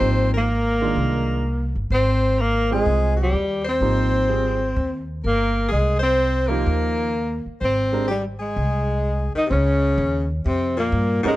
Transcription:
Already playing: grand piano F3 A#3 D#4 G4, tenor saxophone C4 C5
0.01 upright bass G#1
0.34 tenor saxophone A#3 A#4
0.81 grand piano D#3 G#3 D4 F4
0.96 upright bass C2
1.75 upright bass G1
1.90 upright bass G#1, tenor saxophone C4 C5
2.38 tenor saxophone A#3 A#4
2.71 grand piano G#3 C4 F4 G#4, tenor saxophone G#3 G#4
2.86 upright bass C2
3.16 tenor saxophone G4
3.22 tenor saxophone G3
3.33 upright bass D#2
3.64 tenor saxophone C5
3.69 tenor saxophone C4
3.80 upright bass G#1, grand piano F3 A#3 D#4 G4
4.29 grand piano G3 C4 F4 G#4
4.76 upright bass D#2
5.24 upright bass G1, tenor saxophone A#3 A#4
5.68 upright bass C2, tenor saxophone G#3 G#4
5.99 tenor saxophone C4 C5
6.47 grand piano F3 A#3 D#4 G4, tenor saxophone A#3 A#4
6.66 upright bass D#2
7.46 muted upright bass stroke
7.61 upright bass G#1, tenor saxophone C4 C5
7.92 grand piano G#3 D4 G4 A#4
8.07 tenor saxophone G3 G4
8.39 tenor saxophone G#3 G#4
8.56 upright bass C2
9.35 tenor saxophone D#3 D#4, muted upright bass stroke
9.46 tenor saxophone C3 C4
9.51 upright bass C#2, tenor saxophone C#3 C#4
9.98 upright bass D#2
10.45 upright bass F2, tenor saxophone C3 C4
10.77 tenor saxophone A#2 A#3
10.92 upright bass G2
11.23 tenor saxophone G#2, grand piano G#3 C#4 G4 A#4, muted upright bass stroke
11.28 tenor saxophone G#3

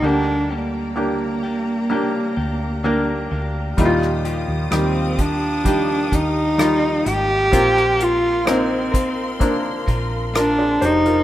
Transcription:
Already playing: string section D5
0.02 fingered electric bass D2, clean electric guitar D3 G3 A#3 D4 G4, felt piano D3 A#3 D4 G4, cello D4, string section G4 A#5
0.50 clean electric guitar D3 G3 A#3 D4 G4, cello A#3
0.96 felt piano A#3 D4 G4
1.43 clean electric guitar A#3 D4 G4
1.89 clean electric guitar G3 A#3 D4 G4, felt piano A#3 D4 G4
2.37 fingered electric bass D2, clean electric guitar A#3 D4 G4
2.84 clean electric guitar D3 G3 A#3 D4 G4, felt piano A#3 D4 A#4
3.31 fingered electric bass D2, clean electric guitar A#3 D4 G4
3.77 fingered electric bass D#2, felt piano A#2 G3 D#4 E4, clean electric guitar D#3 F3 A#3 F4 G4, string section F5 D#6, kick, closed hi-hat
3.85 felt piano F4
4.02 cross-stick
4.25 clean electric guitar D#3 F3 A#3 F4 G4, closed hi-hat
4.48 fingered electric bass D#2
4.71 fingered electric bass D#2, felt piano D#3 G3 G4, cello C4, cross-stick, closed hi-hat
5.18 clean electric guitar A#3 F4 G4, cello D4, kick, closed hi-hat
5.64 felt piano D#3 G3 G4, clean electric guitar F3 A#3 F4 G4, kick, closed hi-hat
6.11 fingered electric bass D#2, clean electric guitar A#3 F4 G4, cello D#4, kick, closed hi-hat
6.58 clean electric guitar D#3 F3 A#3 F4 G4, felt piano G3 D#4 F4, cross-stick, closed hi-hat
7.06 fingered electric bass G#1, clean electric guitar A#3 F4 G4, cello G4, closed hi-hat
7.51 fingered electric bass A#1, felt piano A#3 C4 F4, clean electric guitar A#3 C4 F4 A#4, string section A#4 C6, kick, closed hi-hat
7.77 cross-stick
7.99 clean electric guitar A#3 C4 F4 A#4, cello F4, closed hi-hat
8.46 felt piano A#3 C4 D#4, cross-stick, closed hi-hat
8.50 cello C4
8.92 clean electric guitar C4 F4 A#4, kick, closed hi-hat
9.39 clean electric guitar A#3 C4 F4 A#4, felt piano A#3 C4 D4, kick, closed hi-hat
9.86 fingered electric bass A#1, clean electric guitar C4 F4 A#4, kick, closed hi-hat
10.34 clean electric guitar A#3 C4 F4 A#4, cello D4, felt piano F4 A#4, cross-stick, closed hi-hat
10.58 felt piano G#4 D5
10.80 fingered electric bass F1, clean electric guitar C4 F4 A#4, felt piano G4 C5, closed hi-hat
10.85 cello D#4
11.05 felt piano F4 A#4, closed hi-hat

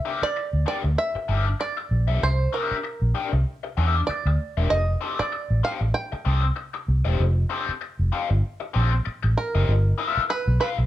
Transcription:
Already playing: five-string banjo E5
0.05 overdriven electric guitar D4 G4 A#4 E5
0.22 five-string banjo D5, muted fingered electric bass stroke
0.36 muted overdriven electric guitar stroke
0.53 fingered electric bass D2
0.66 overdriven electric guitar D4 G4 A#4 G5, five-string banjo D5
0.84 fingered electric bass D2, muted overdriven electric guitar stroke
0.98 five-string banjo E5
1.15 muted fingered electric bass stroke, muted overdriven electric guitar stroke
1.29 fingered electric bass G1, overdriven electric guitar D4 G4 A#4 E5
1.46 muted overdriven electric guitar stroke
1.60 five-string banjo D5, muted overdriven electric guitar stroke
1.77 muted overdriven electric guitar stroke
1.91 fingered electric bass A#1
2.08 fingered electric bass B1, overdriven electric guitar D4 G4 A#4 E5
2.23 fingered electric bass C2, five-string banjo C5
2.53 overdriven electric guitar D4 G4 A#4 E5, five-string banjo A#4
2.71 muted fingered electric bass stroke
2.84 muted overdriven electric guitar stroke
3.02 fingered electric bass A#1
3.15 overdriven electric guitar D4 G4 A#4 G5
3.33 fingered electric bass C2, muted overdriven electric guitar stroke
3.63 muted overdriven electric guitar stroke
3.77 fingered electric bass E2, overdriven electric guitar D4 G4 A#4 E5
3.96 muted overdriven electric guitar stroke
4.07 five-string banjo D5, muted fingered electric bass stroke, muted overdriven electric guitar stroke
4.26 fingered electric bass D2, muted overdriven electric guitar stroke
4.57 fingered electric bass E1, overdriven electric guitar D4 G4 A#4 E5
4.70 five-string banjo D#5
5.01 overdriven electric guitar C4 G4 A4 D#5
5.19 five-string banjo D5, muted fingered electric bass stroke
5.32 muted overdriven electric guitar stroke
5.50 fingered electric bass A1
5.64 overdriven electric guitar C4 G4 A4 F5, five-string banjo F5
5.81 fingered electric bass A1, muted overdriven electric guitar stroke
5.94 five-string banjo G5
6.12 muted overdriven electric guitar stroke, muted fingered electric bass stroke
6.25 fingered electric bass C2, overdriven electric guitar C4 G4 A4 D#5
6.43 muted overdriven electric guitar stroke
6.56 muted overdriven electric guitar stroke
6.74 muted overdriven electric guitar stroke
6.88 fingered electric bass C2
7.05 fingered electric bass E1, overdriven electric guitar C4 G4 A4 D#5
7.20 fingered electric bass F1
7.50 overdriven electric guitar C4 G4 A4 D#5
7.69 muted fingered electric bass stroke
7.81 muted overdriven electric guitar stroke
7.99 fingered electric bass F1
8.12 overdriven electric guitar C4 G4 A4 F5
8.30 fingered electric bass G1, muted overdriven electric guitar stroke
8.60 muted overdriven electric guitar stroke
8.74 fingered electric bass A#1, overdriven electric guitar C4 G4 A4 D#5
8.91 muted overdriven electric guitar stroke
9.05 muted overdriven electric guitar stroke, muted fingered electric bass stroke
9.23 fingered electric bass A1, muted overdriven electric guitar stroke
9.37 five-string banjo A#4
9.55 fingered electric bass F#1, overdriven electric guitar C4 G4 A4 D#5
9.69 fingered electric bass G1
9.98 overdriven electric guitar F4 A4 B4 E5
10.17 muted fingered electric bass stroke
10.30 five-string banjo B4, muted overdriven electric guitar stroke
10.47 fingered electric bass B1
10.60 overdriven electric guitar F4 A4 B4 F5, five-string banjo B4
10.78 fingered electric bass B1, muted overdriven electric guitar stroke

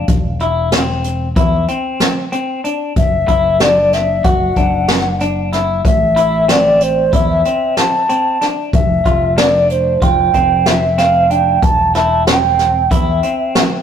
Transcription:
0.08 fingered electric bass E1, kick, closed hi-hat
0.40 clean electric guitar E4, closed hi-hat
0.72 clean electric guitar C4, snare, closed hi-hat
1.04 closed hi-hat
1.36 fingered electric bass E2, clean electric guitar E4, kick, closed hi-hat
1.68 clean electric guitar C4, closed hi-hat
2.00 snare, closed hi-hat
2.32 clean electric guitar C4, closed hi-hat
2.64 clean electric guitar D4, closed hi-hat
2.96 fingered electric bass F#1, ocarina E5, kick, closed hi-hat
3.28 fingered electric bass F#1, clean electric guitar E4, kick, closed hi-hat
3.60 clean electric guitar D4, ocarina D5, snare, closed hi-hat
3.93 ocarina E5, snare, closed hi-hat
4.24 fingered electric bass F#1, clean electric guitar F#4, ocarina F#5, kick, closed hi-hat
4.56 fingered electric bass F#1, clean electric guitar D4, kick, closed hi-hat
4.88 snare, closed hi-hat
5.20 clean electric guitar D4, closed hi-hat
5.53 clean electric guitar E4, snare, closed hi-hat
5.85 fingered electric bass A1, ocarina E5, kick, closed hi-hat
6.16 clean electric guitar E4, closed hi-hat
6.48 clean electric guitar C4, ocarina D5, snare, closed hi-hat
6.81 ocarina C5, closed hi-hat
7.13 fingered electric bass E2, clean electric guitar E4, ocarina E5, kick, closed hi-hat
7.45 clean electric guitar C4, closed hi-hat
7.77 ocarina A5, snare, closed hi-hat
8.09 clean electric guitar C4, closed hi-hat
8.41 clean electric guitar D4, snare, closed hi-hat
8.73 fingered electric bass F1, ocarina E5, kick, closed hi-hat
9.05 fingered electric bass F1, clean electric guitar F4, kick, closed hi-hat
9.38 clean electric guitar D4, ocarina D5, snare, closed hi-hat
9.70 ocarina C5, closed hi-hat
10.02 fingered electric bass F1, clean electric guitar F4, ocarina G5, kick, closed hi-hat
10.34 fingered electric bass F1, clean electric guitar C4, kick, closed hi-hat
10.66 ocarina E5, snare, closed hi-hat
10.98 clean electric guitar C4, ocarina F5, snare, closed hi-hat
11.30 clean electric guitar D4, ocarina G5, closed hi-hat
11.63 fingered electric bass E1, ocarina A5, kick, closed hi-hat
11.95 clean electric guitar E4, ocarina A5, snare, closed hi-hat
12.26 clean electric guitar C4, ocarina G5, snare, closed hi-hat
12.59 snare, closed hi-hat
12.91 fingered electric bass E2, clean electric guitar E4, ocarina E5, kick, closed hi-hat
13.23 clean electric guitar C4, closed hi-hat
13.55 snare, closed hi-hat

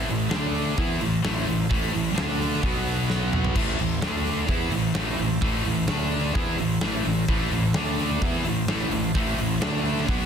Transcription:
Already playing: tonewheel organ E4 C5 A5
0.07 fingered electric bass A1, distorted electric guitar A2 E3, open hi-hat
0.28 fingered electric bass D2, distorted electric guitar D3 A3 D4, tonewheel organ D4 A4, snare
0.55 open hi-hat
0.77 fingered electric bass E2, distorted electric guitar E3 B3 E4, tonewheel organ E4 C5, kick, open hi-hat
1.01 fingered electric bass A1, distorted electric guitar A2 E3, open hi-hat
1.22 fingered electric bass A1, distorted electric guitar A2 E3 A3, snare, open hi-hat
1.48 fingered electric bass A1, distorted electric guitar A2 E3, open hi-hat
1.70 fingered electric bass A1, distorted electric guitar A2 E3 A3, kick, open hi-hat
1.94 fingered electric bass A1, distorted electric guitar A2 E3, open hi-hat
2.15 fingered electric bass D2, distorted electric guitar D3 A3 D4, tonewheel organ D4 A4, snare
2.41 snare, open hi-hat
2.53 snare
2.62 fingered electric bass B1, distorted electric guitar B2 F#3 B3, tonewheel organ B4 B5, kick, open hi-hat
2.66 tonewheel organ F#4
2.86 open hi-hat
3.10 snare
3.33 mid tom
3.45 floor tom
3.53 fingered electric bass A1, distorted electric guitar A2 E3 A3, tonewheel organ E4 C5 A5, kick, crash
3.79 fingered electric bass A1, distorted electric guitar A2 E3, open hi-hat
4.02 fingered electric bass D2, distorted electric guitar D3 A3 D4, tonewheel organ D4 A4, snare, open hi-hat
4.26 snare, open hi-hat
4.45 fingered electric bass E2, tonewheel organ E4 C5, kick, open hi-hat
4.50 distorted electric guitar E3 B3 E4
4.70 fingered electric bass A1, distorted electric guitar A2, open hi-hat
4.75 distorted electric guitar E3
4.95 fingered electric bass A1, distorted electric guitar A2 E3 A3, snare, open hi-hat
5.19 fingered electric bass A1, distorted electric guitar A2 E3, open hi-hat
5.42 fingered electric bass A1, distorted electric guitar A2 E3 A3, kick, open hi-hat
5.65 fingered electric bass A1, distorted electric guitar A2 E3, open hi-hat
5.88 fingered electric bass D2, distorted electric guitar D3 A3 D4, tonewheel organ D4 A4, snare, open hi-hat
6.12 open hi-hat
6.35 fingered electric bass E2, distorted electric guitar E3 B3 E4, tonewheel organ E4 C5, kick
6.58 fingered electric bass A1, distorted electric guitar A2 E3, open hi-hat
6.81 fingered electric bass A1, distorted electric guitar A2 E3 A3, snare, open hi-hat
7.05 fingered electric bass A1, distorted electric guitar A2 E3, open hi-hat
7.28 fingered electric bass A1, distorted electric guitar A2 E3 A3, kick, open hi-hat
7.51 fingered electric bass A1, distorted electric guitar A2 E3, open hi-hat
7.74 fingered electric bass D2, distorted electric guitar D3 A3 D4, tonewheel organ D4 A4 A5, snare
7.99 snare, open hi-hat
8.21 fingered electric bass E2, distorted electric guitar E3 B3 E4, tonewheel organ E4 C5, kick, open hi-hat
8.44 fingered electric bass A1, distorted electric guitar A2 E3, open hi-hat
8.67 fingered electric bass A1, distorted electric guitar A2 E3 A3, snare, open hi-hat
8.91 fingered electric bass A1, distorted electric guitar A2 E3, open hi-hat
9.15 fingered electric bass A1, distorted electric guitar A2 E3 A3, kick, open hi-hat
9.37 fingered electric bass A1, distorted electric guitar A2 E3, open hi-hat
9.60 fingered electric bass D2, distorted electric guitar D3 A3 D4, tonewheel organ D4 A4, snare
9.85 open hi-hat
9.98 snare
10.06 fingered electric bass B1, distorted electric guitar B2 F#3 B3, tonewheel organ F#4 B4 B5, kick, open hi-hat

